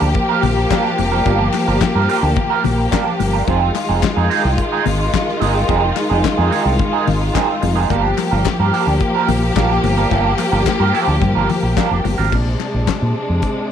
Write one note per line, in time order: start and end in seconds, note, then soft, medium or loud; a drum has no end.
0.00 0.12 D2 loud
0.00 3.44 F3 medium
0.00 3.44 A#3 medium
0.00 3.44 G4 medium
0.00 muted clean electric guitar stroke soft
0.14 muted clean electric guitar stroke soft
0.14 kick loud
0.14 closed hi-hat medium
0.29 0.42 D4 medium
0.29 0.42 F4 medium
0.29 0.43 A#4 medium
0.43 0.65 A#1 medium
0.43 muted clean electric guitar stroke soft
0.43 open hi-hat medium
0.43 muted conga medium
0.43 low conga medium
0.57 muted clean electric guitar stroke soft
0.70 0.91 D4 medium
0.70 0.84 F4 medium
0.70 0.83 A#4 loud
0.70 kick loud
0.70 snare loud
0.70 clap medium
0.70 closed hi-hat medium
0.70 high conga medium
0.84 muted clean electric guitar stroke soft
0.84 snare soft
0.98 1.20 F1 medium
0.98 muted clean electric guitar stroke soft
0.98 open hi-hat medium
0.98 high conga medium
1.12 1.24 D4 soft
1.12 1.25 F4 medium
1.12 1.25 A#4 medium
1.25 1.48 G1 loud
1.25 1.46 D4 medium
1.25 1.39 F4 medium
1.25 1.38 A#4 medium
1.25 kick loud
1.25 closed hi-hat medium
1.25 muted conga medium
1.39 muted clean electric guitar stroke soft
1.53 muted clean electric guitar stroke soft
1.53 clap medium
1.53 open hi-hat medium
1.53 muted conga medium
1.68 1.79 G1 medium
1.68 1.80 D4 medium
1.68 1.81 F4 medium
1.68 1.81 A#4 medium
1.81 muted fingered electric bass stroke soft
1.81 muted clean electric guitar stroke soft
1.81 kick medium
1.81 snare loud
1.81 clap medium
1.81 closed hi-hat medium
1.81 high conga medium
1.95 2.06 G2 medium
1.95 2.08 D4 medium
1.95 2.08 F4 medium
1.95 2.09 A#4 medium
2.09 2.29 D4 medium
2.09 2.22 F4 loud
2.09 2.21 A#4 loud
2.09 open hi-hat medium
2.23 2.34 D2 loud
2.23 muted clean electric guitar stroke soft
2.36 muted clean electric guitar stroke soft
2.36 kick loud
2.36 closed hi-hat medium
2.36 low conga medium
2.50 2.62 D4 medium
2.50 2.63 F4 medium
2.50 2.63 A#4 medium
2.64 2.86 A#1 medium
2.64 muted clean electric guitar stroke soft
2.64 open hi-hat medium
2.64 muted conga medium
2.64 low conga medium
2.78 muted clean electric guitar stroke soft
2.91 3.12 D4 medium
2.91 3.05 F4 medium
2.91 3.04 A#4 loud
2.91 kick loud
2.91 snare loud
2.91 clap medium
2.91 clap loud
2.91 closed hi-hat medium
2.91 high conga medium
3.06 muted clean electric guitar stroke soft
3.19 3.42 G1 medium
3.19 muted clean electric guitar stroke soft
3.19 open hi-hat medium
3.19 high conga medium
3.33 3.47 D4 medium
3.33 3.48 F4 medium
3.33 3.48 A#4 medium
3.47 3.69 F1 medium
3.47 7.86 D#3 medium
3.47 7.86 G#3 medium
3.47 3.68 C4 medium
3.47 3.60 D#4 medium
3.47 7.86 F4 medium
3.47 3.60 G#4 medium
3.47 kick loud
3.47 closed hi-hat medium
3.47 muted conga medium
3.61 muted clean electric guitar stroke soft
3.75 muted clean electric guitar stroke soft
3.75 clap medium
3.75 open hi-hat medium
3.75 muted conga medium
3.89 4.00 F1 medium
3.89 4.01 C4 soft
3.89 4.02 D#4 medium
3.89 4.02 G#4 medium
4.02 muted clean electric guitar stroke soft
4.02 kick loud
4.02 snare loud
4.02 clap medium
4.02 closed hi-hat medium
4.02 high conga medium
4.16 4.28 F2 medium
4.16 4.29 C4 medium
4.16 4.29 D#4 medium
4.16 4.30 G#4 medium
4.30 4.51 C4 medium
4.30 4.44 D#4 medium
4.30 4.43 G#4 loud
4.30 open hi-hat medium
4.30 muted conga soft
4.44 4.55 C2 medium
4.44 muted clean electric guitar stroke soft
4.57 muted clean electric guitar stroke soft
4.57 kick loud
4.57 closed hi-hat medium
4.72 4.84 C4 medium
4.72 4.85 D#4 medium
4.72 4.85 G#4 medium
4.85 5.08 G#1 medium
4.85 muted clean electric guitar stroke soft
4.85 open hi-hat medium
4.85 muted conga medium
4.85 low conga medium
4.99 muted clean electric guitar stroke soft
5.13 muted clean electric guitar stroke soft
5.13 kick loud
5.13 snare medium
5.13 clap loud
5.13 clap medium
5.13 closed hi-hat medium
5.13 high conga medium
5.27 muted clean electric guitar stroke soft
5.27 snare soft
5.40 5.63 G1 medium
5.40 5.61 C4 medium
5.40 5.54 D#4 medium
5.40 5.53 G#4 loud
5.40 open hi-hat medium
5.40 high conga medium
5.55 muted clean electric guitar stroke soft
5.68 5.91 F1 medium
5.68 5.89 C4 medium
5.68 5.81 D#4 loud
5.68 5.81 G#4 medium
5.68 kick loud
5.68 closed hi-hat medium
5.68 muted conga medium
5.82 muted clean electric guitar stroke medium
5.95 muted clean electric guitar stroke soft
5.95 clap medium
5.95 open hi-hat medium
5.95 muted conga medium
6.10 6.21 F1 medium
6.10 6.22 C4 medium
6.10 6.23 D#4 medium
6.10 6.23 G#4 medium
6.24 kick medium
6.24 snare loud
6.24 clap medium
6.24 closed hi-hat medium
6.24 high conga medium
6.37 6.49 F2 medium
6.37 6.50 C4 medium
6.37 6.50 D#4 soft
6.37 6.51 G#4 medium
6.51 6.72 C4 medium
6.51 6.65 D#4 medium
6.51 6.64 G#4 loud
6.51 open hi-hat medium
6.51 muted conga soft
6.65 6.76 C2 loud
6.65 muted clean electric guitar stroke soft
6.79 muted clean electric guitar stroke soft
6.79 kick loud
6.79 closed hi-hat medium
6.79 low conga medium
6.93 7.05 C4 medium
6.93 7.06 D#4 medium
6.93 7.06 G#4 medium
7.06 7.29 G#1 medium
7.06 muted clean electric guitar stroke soft
7.06 open hi-hat medium
7.06 muted conga medium
7.06 low conga medium
7.21 muted clean electric guitar stroke soft
7.34 7.55 C4 medium
7.34 7.48 D#4 loud
7.34 7.47 G#4 loud
7.34 kick loud
7.34 snare loud
7.34 clap medium
7.34 closed hi-hat medium
7.34 high conga medium
7.48 muted clean electric guitar stroke medium
7.62 7.84 F1 loud
7.62 muted clean electric guitar stroke soft
7.62 open hi-hat medium
7.62 high conga medium
7.75 7.89 C4 medium
7.75 7.90 D#4 medium
7.75 7.90 G#4 medium
7.90 8.12 G1 medium
7.90 12.28 F3 medium
7.90 12.29 A#3 medium
7.90 8.10 D4 medium
7.90 8.03 F4 medium
7.90 12.28 G4 loud
7.90 8.03 A#4 medium
7.90 kick loud
7.90 closed hi-hat medium
7.90 muted conga medium
8.04 muted clean electric guitar stroke soft
8.17 muted clean electric guitar stroke soft
8.17 clap medium
8.17 open hi-hat medium
8.17 muted conga medium
8.31 8.43 G1 loud
8.31 8.44 D4 medium
8.31 8.44 F4 medium
8.31 8.45 A#4 medium
8.45 muted clean electric guitar stroke soft
8.45 kick medium
8.45 snare loud
8.45 clap medium
8.45 closed hi-hat medium
8.45 high conga medium
8.60 8.70 G2 medium
8.60 8.72 D4 medium
8.60 8.73 F4 medium
8.60 8.73 A#4 medium
8.74 8.94 D4 medium
8.74 8.87 F4 medium
8.74 8.86 A#4 loud
8.74 open hi-hat medium
8.87 8.98 D2 medium
8.87 muted clean electric guitar stroke medium
9.00 muted clean electric guitar stroke soft
9.00 kick loud
9.00 closed hi-hat medium
9.15 9.28 D4 medium
9.15 9.28 F4 medium
9.15 9.28 A#4 medium
9.28 9.50 A#1 loud
9.28 muted clean electric guitar stroke soft
9.28 open hi-hat medium
9.28 muted conga medium
9.28 low conga medium
9.42 muted clean electric guitar stroke soft
9.56 9.78 A#1 loud
9.56 9.77 D4 medium
9.56 9.70 F4 medium
9.56 9.69 A#4 loud
9.56 kick loud
9.56 snare loud
9.56 clap medium
9.56 closed hi-hat medium
9.56 high conga medium
9.71 muted clean electric guitar stroke soft
9.71 snare soft
9.83 10.05 G1 loud
9.83 muted clean electric guitar stroke soft
9.83 open hi-hat medium
9.83 high conga medium
9.98 10.10 D4 medium
9.98 10.10 F4 medium
9.98 10.11 A#4 medium
10.11 10.33 G1 medium
10.11 10.32 D4 medium
10.11 10.25 F4 medium
10.11 10.24 A#4 loud
10.11 kick loud
10.11 closed hi-hat medium
10.11 muted conga medium
10.25 muted clean electric guitar stroke medium
10.38 muted clean electric guitar stroke soft
10.38 clap medium
10.38 open hi-hat medium
10.38 muted conga medium
10.52 10.63 G1 medium
10.52 10.65 D4 medium
10.52 10.65 F4 medium
10.52 10.66 A#4 medium
10.66 muted clean electric guitar stroke soft
10.66 muted fingered electric bass stroke soft
10.66 kick loud
10.66 snare loud
10.66 clap loud
10.66 clap medium
10.66 closed hi-hat medium
10.66 high conga medium
10.80 10.91 G2 medium
10.80 10.93 D4 medium
10.80 10.93 F4 medium
10.80 10.93 A#4 medium
10.94 11.14 D4 medium
10.94 11.07 F4 medium
10.94 11.06 A#4 loud
10.94 open hi-hat medium
10.94 muted conga soft
11.07 11.18 D2 medium
11.07 muted clean electric guitar stroke soft
11.21 11.33 G2 loud
11.21 muted clean electric guitar stroke soft
11.21 kick loud
11.21 closed hi-hat medium
11.21 low conga medium
11.35 11.46 G1 loud
11.35 11.48 D4 medium
11.35 11.48 F4 medium
11.35 11.49 A#4 medium
11.49 muted clean electric guitar stroke soft
11.49 open hi-hat medium
11.49 muted conga medium
11.49 low conga medium
11.63 11.74 A#1 medium
11.63 muted clean electric guitar stroke soft
11.76 11.97 D4 medium
11.76 11.90 F4 medium
11.76 11.89 A#4 loud
11.76 kick loud
11.76 snare loud
11.76 clap medium
11.76 closed hi-hat medium
11.76 high conga medium
11.90 12.02 F1 medium
11.90 muted clean electric guitar stroke soft
12.04 12.15 G1 medium
12.04 muted clean electric guitar stroke soft
12.04 open hi-hat medium
12.04 high conga medium
12.18 12.29 G#1 medium
12.18 12.35 D4 soft
12.18 12.34 F4 medium
12.18 12.34 A#4 medium
12.32 12.54 A#1 medium
12.32 13.72 C3 medium
12.32 13.72 G#3 medium
12.32 13.72 D4 medium
12.32 kick loud
12.32 crash medium
12.32 muted conga medium
12.60 clap medium
12.60 muted conga medium
12.74 12.85 A#1 medium
12.87 muted fingered electric bass stroke soft
12.87 kick medium
12.87 snare medium
12.87 clap medium
12.87 closed hi-hat medium
12.87 high conga medium
13.02 13.13 A#2 medium
13.15 muted conga soft
13.29 13.40 F2 medium
13.42 kick medium
13.42 closed hi-hat medium